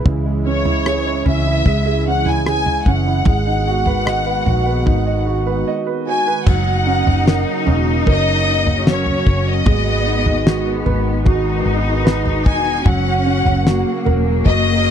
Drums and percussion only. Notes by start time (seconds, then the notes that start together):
0.06 kick, floor tom
0.65 floor tom
0.86 cross-stick
1.26 floor tom
1.66 kick, floor tom
2.26 floor tom
2.46 cross-stick
2.66 floor tom
2.86 kick
3.25 kick, floor tom
3.86 floor tom
4.07 cross-stick
4.46 floor tom
4.86 kick, floor tom
6.47 kick, floor tom, crash
7.07 floor tom
7.28 snare
7.67 floor tom
8.06 kick, floor tom
8.67 floor tom
8.87 snare
9.06 floor tom
9.27 kick
9.66 kick, floor tom
10.26 floor tom
10.47 snare
10.86 floor tom
11.26 kick, floor tom
12.07 snare
12.26 floor tom
12.46 kick
12.86 kick, floor tom
13.46 floor tom
13.67 snare
14.06 floor tom
14.46 kick, floor tom